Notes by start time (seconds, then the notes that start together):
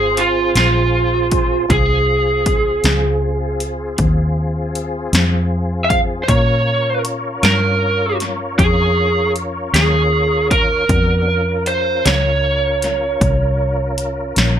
Already playing: G#1 C4 F4 G#4 C5
0.17 F4, closed hi-hat
0.55 A#1 F4, snare, closed hi-hat
1.31 kick, closed hi-hat
1.69 C2 C4 F4 G#4, kick, closed hi-hat
2.46 kick, closed hi-hat
2.84 C#2, snare, closed hi-hat
3.60 closed hi-hat
3.98 D#2, kick, closed hi-hat
4.75 closed hi-hat
5.13 F2, snare, closed hi-hat
5.84 E5
5.90 F5, kick, closed hi-hat
6.23 C5
6.28 A#2 C#4 F4 A#4 C#5, kick, closed hi-hat
7.05 closed hi-hat
7.43 G2 A#4, snare, closed hi-hat
8.20 snare, closed hi-hat
8.59 F2 G#4, kick, closed hi-hat
9.36 closed hi-hat
9.73 D#2 G#4, snare, closed hi-hat
10.51 A#4, kick, closed hi-hat
10.89 F2 B3 D4 F#4, kick, closed hi-hat
11.27 C#4 F4 A#4
11.66 C5, closed hi-hat
12.06 C#2 C#5, snare, closed hi-hat
12.82 snare, closed hi-hat
13.21 C2, kick, closed hi-hat
13.98 closed hi-hat
14.36 A#1, snare, closed hi-hat